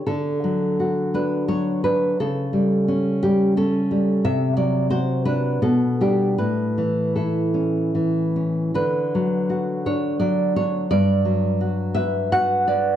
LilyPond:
\new Staff \with { instrumentName = "Nylon-string guitar" } { \time 3/4 \key d \major \tempo 4 = 85 << { a'4. b'8 cis''8 b'8 | a'4. g'8 a'4 | e''8 d''8 c''8 b'8 a'8 g'8 | b'4 a'4. r8 |
b'4. cis''8 d''8 cis''8 | d''4. e''8 fis''8 d''8 | } \\ { d8 fis8 fis'8 d'8 fis8 d'8 | cis8 g8 cis'8 g8 cis'8 g8 | c8 fis8 fis'8 d'8 b,8 <g d'>8 | a,8 e8 e'8 cis'8 e8 cis'8 |
d8 fis8 fis'8 d'8 fis8 d'8 | g,8 fis8 fis'8 b'8 fis'8 b'8 | } >> }